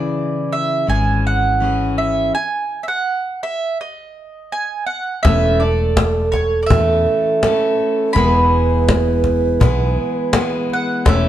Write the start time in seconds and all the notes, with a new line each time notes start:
Already playing: C#3 E3 E4 G#4 D5
0.52 E5
0.87 G#1 E3 C#4 E4 G#4 G#5
1.27 F#5
1.60 E3 C#4 E4 G#4
1.98 E5
2.35 G#5
2.83 E5
2.88 F#5
3.43 E5
3.81 D#5
4.52 G#5
4.87 F#5
5.23 E1 E3 A3 C#4 A4 E5, cajon bass, cajon slap
5.60 A4 D5, cajon slap
5.64 A3
5.79 cajon slap
5.97 cajon bass, cajon slap
6.32 C#5, cajon bass, cajon slap
6.63 D5 E5
6.70 E2 E3 A3 C#4 A4, cajon bass
7.06 cajon slap
7.43 E3 A3 C#4 A4, cajon slap
7.80 cajon slap
8.13 E1 E3 G#3 A#4 B5, cajon bass, cajon slap
8.17 B3 E4 G#4
8.29 B4
8.52 cajon slap
8.70 cajon slap
8.89 cajon bass, cajon slap
9.24 cajon bass, cajon slap
9.60 B1 G#3 B3 E4 G#4, cajon bass
9.97 cajon slap
10.33 G#3 B3 E4 G#4, cajon slap
10.70 F#5, cajon slap
11.05 E1 E3 A3 C#4 A4 C#5 E5, cajon bass, cajon slap